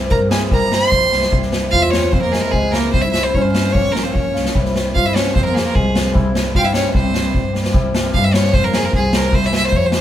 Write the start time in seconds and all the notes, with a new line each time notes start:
0.00 G3 C4 E4
0.10 G2 A#4 A#5, kick
0.29 G3 C4 E4 G#4 G#5, snare
0.50 C2 G3 C4 E4 A#4 A#5, kick
0.71 G1 C5 C6, snare
0.80 G3 C4 E4
0.92 A#1, kick
1.11 C2 G3 C4 E4, snare
1.22 snare
1.30 C2 G3 C4 E4, kick
1.42 snare
1.52 snare
1.61 G3 C4 E4
1.71 E2 F4 F5, kick
1.82 E5
1.91 G3 C4 G4 C#5, snare
2.12 F2 G#3 C4 F4 C5, kick
2.22 A#3 A#4
2.32 G#3 G#4, snare
2.41 G#3 C4 E4 A#4
2.52 C#2 G#3 G#4, kick
2.72 G#3 A#3 C4 E4 A#4, snare
2.92 C2 G3 C4 E4 C5, kick
3.02 E5
3.07 E4
3.12 F4 E5, snare
3.18 E4
3.23 G3 C4 E4 C5
3.34 G2 C#4 C#5, kick
3.42 C5
3.52 G3 C4 E4 C5, snare
3.72 A#1 A#3 C#4 F4 C#5, kick
3.83 C4
3.89 C#4 A#4
3.95 snare
4.03 A#3 C4 C#4 F4 C5
4.13 A#1 C#4 C#5, kick
4.33 C2 A#3 C#4 F4, snare
4.46 snare
4.54 C2 G3 C4 E4, kick
4.65 snare
4.76 snare
4.84 G3 C4 E4
4.95 G2 F4 F5, kick
5.06 E4 E5
5.13 G3 C4 C#4 G4 C#5, snare
5.27 snare
5.33 F2 G#3 C4 F4 C5, kick
5.45 A#3 A#4
5.55 G#4, snare
5.64 G#3 C4 F4 A#4
5.75 C2 G#3 G#4, kick
5.94 G#3 C4 F4, snare
6.12 C2 G3 C4 E4, kick
6.35 snare
6.43 G3 C4 E4
6.55 G2 F4 F5 G5, kick
6.60 F4 F5
6.64 E4 E5
6.73 G3 C4 C#4 E4 C#5, snare
6.93 C2 G3 C4 E4 C5, kick
7.14 snare
7.24 G3 C4 E4
7.35 G2, kick
7.53 G3 C4 G4, snare
7.64 snare
7.73 C2 G3 C4 E4, kick
7.94 snare
8.03 G3 C4 E4
8.14 G2 F5, kick
8.24 E5
8.33 G3 C4 E4 C#5, snare
8.44 snare
8.53 F2 G#3 C4 F4 C5, kick
8.64 A#4
8.73 G#4, snare
8.83 G#3 C4 F4 A#4
8.93 C2 G#4, kick
9.12 G#3 C4 G4, snare
9.16 A#4
9.32 C2 G3 C4 E4 C5, kick
9.43 E5, snare
9.53 E5, snare
9.60 G3 C4 E4
9.67 C5
9.73 F2 C#5, kick
9.86 C5
9.91 G3 C4 G4, snare
9.95 C5